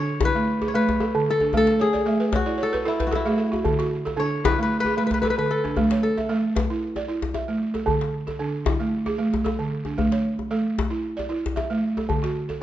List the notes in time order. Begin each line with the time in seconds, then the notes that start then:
Already playing: D3 D4 A4 C#5
0.21 E4, djembe slap, djembe tone, djembe bass
0.25 B4
0.35 A3
0.62 G#4, djembe slap, djembe tone
0.68 C#5
0.74 A3 B4
0.89 djembe slap, djembe bass
1.00 A4, djembe tone
1.15 D3, djembe slap
1.30 A4
1.40 D4, djembe tone
1.53 A3, djembe bass
1.57 A4
1.67 djembe slap
1.80 G#4 C#5
1.93 D5, djembe slap, djembe tone
2.06 A3 E5
2.20 B4
2.32 F#4 C#5, djembe slap, djembe bass
2.46 E4 D5
2.58 C#5
2.63 A4
2.73 B4, djembe slap, djembe tone
2.85 E4 A4
3.00 B4, djembe slap, djembe bass
3.07 F#4
3.11 E4 A4, djembe tone
3.26 A3 G#4, djembe slap
3.38 A4
3.52 F#4, djembe tone
3.65 D3, djembe bass
3.79 F#4, djembe slap
4.05 A4, djembe slap, djembe tone
4.17 D3 D4 C#5
4.44 E4 B4, djembe slap, djembe tone, djembe bass
4.58 A3
4.63 B4
4.80 B4
4.85 G#4, djembe slap, djembe tone
4.97 A3 B4
5.07 B4
5.11 B4, djembe slap, djembe bass
5.22 A4 B4, djembe tone
5.30 B4
5.38 D3 B4, djembe slap
5.51 A4
5.64 D4, djembe tone
5.77 A3, djembe bass
5.91 C#5, djembe slap
6.03 A4
6.17 E5, djembe slap, djembe tone
6.29 A3 A4
6.55 B4, djembe slap, djembe bass
6.70 E4
6.96 D5, djembe tone
7.08 E4
7.22 djembe slap, djembe bass
7.34 E5, djembe slap, djembe tone
7.48 A3, djembe slap
7.74 A4, djembe tone
7.86 D3, djembe bass
8.01 djembe slap
8.27 A4, djembe slap, djembe tone
8.39 D3 D4
8.66 E4, djembe slap, djembe tone, djembe bass
8.80 A3
9.06 G#4, djembe slap, djembe tone
9.19 A3
9.34 djembe slap, djembe bass
9.44 A4, djembe tone
9.59 D3, djembe slap
9.85 D4, djembe tone
9.98 A3, djembe bass
10.12 C#5, djembe slap
10.39 djembe slap, djembe tone
10.51 A3 A4
10.79 djembe slap, djembe bass
10.90 E4
11.17 D5, djembe slap, djembe tone
11.29 E4
11.46 djembe slap, djembe bass
11.56 E5, djembe tone
11.70 A3, djembe slap
11.97 A4, djembe tone
12.09 D3, djembe bass
12.23 F#4, djembe slap
12.49 A4, djembe slap, djembe tone